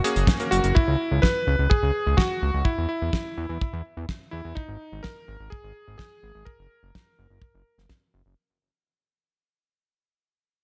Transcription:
0.04 electric grand piano A#3 C#4 F#4 G#4, closed hi-hat
0.16 analog synth bass F#1, closed hi-hat
0.27 kick, snare, closed hi-hat
0.40 electric grand piano A#3 C#4 F#4 A#4, closed hi-hat
0.51 analog synth bass F#1, electric grand piano F#4, closed hi-hat
0.64 analog synth bass F#1, closed hi-hat
0.75 electric grand piano E4, kick
0.88 analog synth bass C#2
1.12 analog synth bass C#2
1.22 electric grand piano B4, kick, snare
1.47 analog synth bass C#2
1.59 analog synth bass C#2
1.70 electric grand piano G#4, kick
1.83 analog synth bass C#2
2.07 analog synth bass C#2
2.17 electric grand piano F#4, kick, snare
2.42 analog synth bass C#2
2.54 analog synth bass C#2
2.65 electric grand piano E4, kick
2.78 analog synth bass E2
2.89 electric grand piano E4
3.02 analog synth bass E2
3.13 kick, snare
3.38 analog synth bass E2
3.49 analog synth bass E2
3.61 kick
3.73 analog synth bass E2
3.97 analog synth bass E2
4.09 kick, snare
4.31 analog synth bass E2, electric grand piano E4
4.45 analog synth bass E2
4.55 electric grand piano D#4, kick
4.68 analog synth bass G#1
4.92 analog synth bass G#1
5.03 electric grand piano A#4, kick, snare
5.28 analog synth bass G#1
5.40 analog synth bass G#1
5.50 electric grand piano G#4, kick
5.64 analog synth bass G#1
5.88 analog synth bass G#1
5.98 electric grand piano G#4, kick, snare
6.23 analog synth bass G#1
6.35 analog synth bass G#1
6.45 electric grand piano A#4, kick
6.59 analog synth bass F#1
6.83 analog synth bass F#1
6.95 kick, snare
7.19 analog synth bass F#1
7.31 analog synth bass F#1
7.42 kick
7.54 analog synth bass F#1
7.78 analog synth bass F#1, snare
7.90 kick, snare
8.14 analog synth bass F#1
8.26 analog synth bass F#1

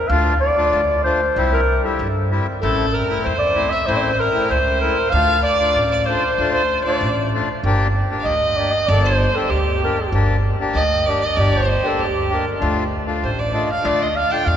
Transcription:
0.08 upright bass D2, accordion A3 D4 F4, clarinet F5
0.40 clarinet D5
0.57 accordion A3 D4 F4
0.73 upright bass D2
1.04 accordion A3 D4 F4, clarinet C5
1.36 upright bass C2, accordion G3 C4 E4
1.53 clarinet A#4
1.84 accordion G3 C4 E4, clarinet A4
1.99 upright bass G2
2.31 accordion G3 C4 E4
2.61 upright bass A1, accordion A3 C4 E4, clarinet A4, violin A4
2.93 clarinet A#4, violin A#4
3.09 accordion A3 C4 E4
3.23 upright bass E2, clarinet C5, violin C5
3.38 clarinet D5
3.55 accordion A3 C4 E4
3.70 clarinet E5, violin E5
3.86 upright bass A1, accordion A3 C4 E4, clarinet C5, violin C5
3.96 clarinet D5
4.01 clarinet C5
4.13 violin C5
4.20 clarinet A#4, violin A#4
4.34 accordion A3 C4 E4
4.50 upright bass C#2, clarinet C5, violin C5
4.80 accordion A3 C4 E4, clarinet A#4
5.10 upright bass D2, accordion A3 D4, clarinet F5, violin F5
5.14 accordion F4
5.43 clarinet D5, violin D5
5.60 accordion A3 D4 F4
5.76 upright bass A1
5.91 violin D5
6.05 accordion A3 D4 F4, violin C5, clarinet C5
6.38 upright bass D2, accordion A3 D4 F4
6.52 clarinet C5, violin C5
6.83 accordion A3 D4 F4, clarinet D5, violin D5
7.01 upright bass A1
7.34 accordion A3 D4 F4
7.64 upright bass G1, accordion A#3 D4 G4
8.11 accordion A#3 D4 G4
8.20 violin F5
8.24 upright bass D2, clarinet D#5, violin D#5
8.56 accordion A#3 D4 G4, clarinet D5
8.71 clarinet D#5
8.87 upright bass G1, accordion A#3 A4, clarinet D5, violin D5
8.91 accordion D4
9.03 clarinet C5, violin C5
9.35 accordion A#3 D4 G4, clarinet A4
9.50 upright bass D2, violin G4, clarinet G4
9.83 accordion A#3 D4 G4, clarinet A#4
10.12 upright bass G1, accordion A#3 D4 G4
10.60 accordion A#3 D4 G4
10.74 upright bass D2, violin D#5, clarinet D#5
11.06 accordion A#3 D4 G4, violin D5, clarinet D5
11.20 violin D#5
11.25 clarinet D#5
11.36 upright bass G1, accordion A#3 D4 G4, violin D5
11.41 clarinet D5
11.52 violin C5
11.56 clarinet C5
11.83 accordion A#3 D4 G4, clarinet A4
11.99 upright bass D2, violin G4
12.04 clarinet G4
12.30 accordion A#3 D4 G4
12.34 clarinet A#4
12.60 upright bass D2, accordion A3 D4 F4
13.07 accordion A3 D4 F4
13.23 upright bass A1, clarinet C5, violin C5
13.39 violin D5, clarinet D5
13.52 accordion A3 D4 F4, clarinet D#5
13.71 clarinet F5, violin F5
13.83 upright bass D2, accordion A3 D4 F4, clarinet D5
13.87 violin D5
14.02 violin D#5, clarinet D#5
14.16 clarinet F5, violin F5
14.29 accordion A3 D4 F4, violin G5 A5, clarinet G5
14.45 upright bass E2, clarinet F5, violin F5

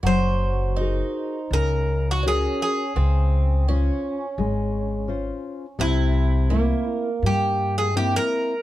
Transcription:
0.03 upright bass F#1, nylon-string guitar F#3, twelve-string acoustic guitar F#4, bouzouki C5
0.76 twelve-string acoustic guitar D#4, nylon-string guitar F#4 G#4
0.81 nylon-string guitar A#4
1.51 upright bass C#2, nylon-string guitar C#3, bouzouki A#4
2.11 bouzouki F#4
2.23 twelve-string acoustic guitar C#4, nylon-string guitar F#4 G#4 A#4
2.28 bouzouki G#4
2.62 bouzouki G#4
2.95 upright bass C#2, nylon-string guitar C#3, twelve-string acoustic guitar C4
3.68 twelve-string acoustic guitar C#4, nylon-string guitar C#4 F4 C5
4.38 upright bass G#1, nylon-string guitar G#3
5.08 nylon-string guitar C#4 F4 C5
5.79 upright bass C2, nylon-string guitar C3, twelve-string acoustic guitar C4, bouzouki E4
6.50 nylon-string guitar A#3 C4 E4, twelve-string acoustic guitar A#3
7.22 upright bass G2, nylon-string guitar G3, bouzouki G4
7.78 bouzouki G#4
7.94 twelve-string acoustic guitar G#3, nylon-string guitar A#3 C4 E4, bouzouki G4
8.16 bouzouki A#4

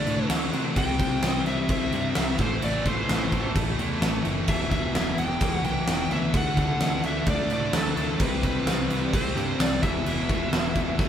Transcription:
Already playing: distorted electric guitar D3 A3 D4, lead electric guitar D5
0.07 picked electric bass A2, overdriven electric guitar D3 A3 D4, crash
0.29 picked electric bass D2, overdriven electric guitar D3 A3 D4, snare, crash
0.53 picked electric bass C3, overdriven electric guitar D3 A3 D4, crash
0.76 picked electric bass C2, overdriven electric guitar C3 G3 C4, lead electric guitar G5, kick, crash
0.99 overdriven electric guitar C3 G3 C4, kick, crash
1.22 picked electric bass C2, overdriven electric guitar C3 G3 C4, snare, crash
1.46 picked electric bass C2, overdriven electric guitar C3 G3 C4, lead electric guitar E5, crash
1.69 picked electric bass C2, overdriven electric guitar C3 G3 C4, kick, crash
1.92 picked electric bass G2, overdriven electric guitar C3 G3 C4, crash
2.15 picked electric bass C2, overdriven electric guitar C3 G3 C4, snare, crash
2.38 picked electric bass A1, overdriven electric guitar A2 E3 A3, lead electric guitar C5, kick, crash
2.62 picked electric bass A1, overdriven electric guitar A2 E3 A3, lead electric guitar D5, crash
2.86 overdriven electric guitar A2 E3 A3, lead electric guitar C5, kick, crash
3.09 picked electric bass A1, overdriven electric guitar A2 E3 A3, snare, crash
3.32 picked electric bass A1, overdriven electric guitar A2 E3 A3, kick, crash
3.56 picked electric bass A1, overdriven electric guitar A2 E3 A3, kick, crash
3.78 picked electric bass E2, overdriven electric guitar A2 E3 A3, crash
4.01 picked electric bass A1, overdriven electric guitar A2 E3 A3, snare, crash
4.25 picked electric bass F#1, overdriven electric guitar A2 E3 A3, crash
4.48 picked electric bass E1, overdriven electric guitar E2 B2 E3, analog synth pad E3 F#3 B3, lead electric guitar E5, kick, crash
4.71 overdriven electric guitar E2 B2 E3, lead electric guitar E5, kick, crash
4.94 picked electric bass E1, overdriven electric guitar E2 B2 E3, snare, crash
5.18 picked electric bass E1, overdriven electric guitar E2 B2 E3, lead electric guitar G5, crash
5.41 picked electric bass E1, overdriven electric guitar E2 B2 E3, kick, crash
5.64 picked electric bass B1, overdriven electric guitar E2 B2 E3, lead electric guitar G5, crash
5.87 picked electric bass E1, overdriven electric guitar E2 B2 E3, snare, crash
6.10 picked electric bass D2, overdriven electric guitar E2 B2 E3, lead electric guitar E5, crash
6.33 picked electric bass D2, overdriven electric guitar D3 A3 D4, analog synth pad D4 A4 E5, lead electric guitar F#5, kick, crash
6.56 overdriven electric guitar D3 A3 D4, lead electric guitar F#5, kick, crash
6.80 picked electric bass D2, overdriven electric guitar D3 A3 D4, snare, crash
7.03 picked electric bass D2, overdriven electric guitar D3 A3 D4, lead electric guitar E5, crash
7.26 picked electric bass D2, overdriven electric guitar D3 A3 D4, lead electric guitar D5, kick, crash
7.50 picked electric bass A2, overdriven electric guitar D3 A3 D4, lead electric guitar D5, crash
7.73 picked electric bass D2, overdriven electric guitar D3 A3 D4, lead electric guitar A4, snare, crash
7.96 picked electric bass D2, overdriven electric guitar D3 A3 D4, crash
8.19 picked electric bass C2, overdriven electric guitar C3 G3 C4, analog synth pad C4 G4 D5, lead electric guitar B4, kick, crash
8.42 overdriven electric guitar C3 G3 C4, lead electric guitar B4, kick, crash
8.65 picked electric bass C2, overdriven electric guitar C3 G3 C4, snare, crash
8.89 picked electric bass C2, overdriven electric guitar C3 G3 C4, crash
9.13 picked electric bass C2, overdriven electric guitar C3 G3 C4, lead electric guitar C5, kick, crash
9.36 picked electric bass G2, overdriven electric guitar C3 G3 C4, crash
9.59 picked electric bass C2, overdriven electric guitar C3 G3 C4, lead electric guitar D5, snare, crash
9.82 picked electric bass E1, overdriven electric guitar E2 B2 E3, analog synth pad E3 B3 F#4, lead electric guitar E5, kick, crash
10.06 picked electric bass E1, overdriven electric guitar E2 B2 E3, crash
10.29 overdriven electric guitar E2 B2 E3, kick, crash
10.52 picked electric bass E1, overdriven electric guitar E2 B2 E3, snare, crash
10.75 picked electric bass E1, overdriven electric guitar E2 B2 E3, kick, crash
10.99 picked electric bass E1, overdriven electric guitar E2 B2 E3, kick, snare

